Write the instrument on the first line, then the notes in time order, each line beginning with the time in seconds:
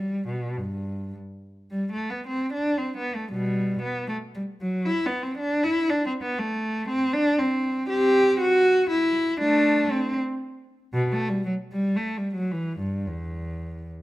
cello
0.00 G3
0.28 B2
0.57 G2
1.71 G3
1.92 A3
2.10 B3
2.27 C4
2.53 D4
2.78 C4
2.97 B3
3.15 A3
3.32 B2 G3
3.82 B3
4.09 A3
4.35 G3
4.61 F#3
4.86 E4
5.06 B3
5.23 C4
5.38 D4
5.64 E4
5.90 D4
6.06 C4
6.22 B3
6.39 A3
6.89 C4
7.13 D4
7.39 C4
7.89 C4 G4
8.40 F#4
8.90 E4
9.41 A3 D4
9.91 C4
10.93 B2
11.12 A3
11.29 G3
11.46 F#3
11.73 G3
11.96 A3
12.17 G3
12.35 F#3
12.51 E3
12.79 G2
13.07 E2